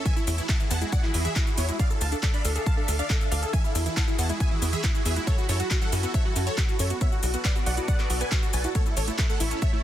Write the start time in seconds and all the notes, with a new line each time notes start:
0.05 E3 E4 F#4 G#4 E5 G#5, kick, closed hi-hat, shaker
0.16 E4, shaker
0.27 E2 E4, open hi-hat, shaker
0.38 E3 E4, closed hi-hat, shaker
0.48 E4 F#5 A5, kick, clap, closed hi-hat, shaker
0.59 E3 E4, shaker
0.70 E2 B3 F#5 A5, open hi-hat, shaker
0.81 G#3 E4, closed hi-hat, shaker
0.92 D5 F#5, kick, closed hi-hat, shaker
1.03 E3 E4, clap
1.14 E2 B3 E4, open hi-hat, shaker
1.25 E3 G#4 E5, closed hi-hat, shaker
1.36 E4, kick, clap, closed hi-hat, shaker
1.47 E4, shaker
1.58 E2 B3 E4 C#5, open hi-hat, shaker
1.68 G#3 E4, closed hi-hat, shaker
1.79 D4 A4 D5 E5 F5, kick, closed hi-hat, shaker
1.90 A4, shaker
2.01 D2 F5 A5, open hi-hat, shaker
2.12 D4 A4, closed hi-hat, shaker
2.23 A4 D5, kick, clap, closed hi-hat, shaker
2.34 D4 D5 B5, shaker
2.45 D2 A4, open hi-hat, shaker
2.56 G#4 A4, closed hi-hat, shaker
2.66 F5 A5, kick, closed hi-hat, shaker
2.77 D4 A4
2.88 D2 A4, open hi-hat, shaker
2.99 D4 D5 F5, closed hi-hat, shaker
3.10 A4 D5, kick, clap, closed hi-hat, shaker
3.21 A4, shaker
3.32 D2 A4 D5 F5, open hi-hat, shaker
3.42 G#4 A4, closed hi-hat, shaker
3.53 E3 E4 F#4 G#4 E5 G#5, kick, closed hi-hat, shaker
3.64 E4, shaker
3.75 E2 E4, open hi-hat, shaker
3.86 E3 E4, closed hi-hat, shaker
3.96 E4 F#5 A5, kick, clap, closed hi-hat, shaker
4.08 E3 E4, shaker
4.18 E2 B3 F#5 A5, open hi-hat, shaker
4.29 G#3 E4, closed hi-hat, shaker
4.40 E5 G#5, kick, closed hi-hat, shaker
4.51 E3 E4
4.62 E2 B3 E4, open hi-hat, shaker
4.72 E3 G#4 E5, closed hi-hat, shaker
4.84 E4, kick, clap, closed hi-hat, shaker
4.94 E4, shaker
5.05 E2 B3 G#4 E5, open hi-hat, shaker
5.16 G#3 E4, closed hi-hat, shaker
5.27 F#3 A4 C#5, kick, closed hi-hat, shaker
5.38 F#4, shaker
5.49 F#2 A4 C#5, open hi-hat, shaker
5.60 F#3 F#4, closed hi-hat, shaker
5.71 F#4, kick, clap, closed hi-hat, shaker
5.81 F#3 A4 F#5, shaker
5.92 F#2 C#4 F#4, open hi-hat, shaker
6.03 B3 F#4, closed hi-hat, shaker
6.14 C#5 E5, kick, closed hi-hat, shaker
6.25 F#3 F#4
6.36 F#2 C#4 F#4, open hi-hat, shaker
6.47 F#3 A4 C#5, closed hi-hat, shaker
6.57 F#4, kick, clap, closed hi-hat, shaker
6.68 F#4, shaker
6.79 F#2 C#4 A4 C#5, open hi-hat, shaker
6.90 B3 F#4, closed hi-hat, shaker
7.01 B3 A4 C#5 D5 E5, kick, closed hi-hat, shaker
7.12 F#4, shaker
7.23 B1 F#4, open hi-hat, shaker
7.34 B3 F#4, closed hi-hat, shaker
7.45 B4 D5 F#5, kick, clap, closed hi-hat, shaker
7.55 B3 F#4, shaker
7.66 B1 F#4 D5 F#5, open hi-hat, shaker
7.77 E4 F#4, closed hi-hat, shaker
7.88 D5 F#5, kick, closed hi-hat, shaker
7.99 B3 F#4, clap, shaker
8.10 B1 F#4, open hi-hat, shaker
8.21 B3 B4 G#5, closed hi-hat, shaker
8.32 F#4 B4, kick, clap, closed hi-hat, shaker
8.43 F#4, shaker
8.53 B1 F#4 B4 G#5, open hi-hat, shaker
8.64 E4 F#4, closed hi-hat, shaker
8.75 A3 A4 C#5 E5, kick, closed hi-hat, shaker
8.86 E4, shaker
8.97 A1 A4 C#5, open hi-hat, shaker
9.08 A3 E4, closed hi-hat, shaker
9.18 E4 A4, kick, clap, closed hi-hat, shaker
9.29 A3 A4 F#5, shaker
9.40 A1 E4, open hi-hat, shaker
9.51 C#4 E4, closed hi-hat, shaker
9.62 C#5 E5, kick, closed hi-hat, shaker
9.73 A3 E4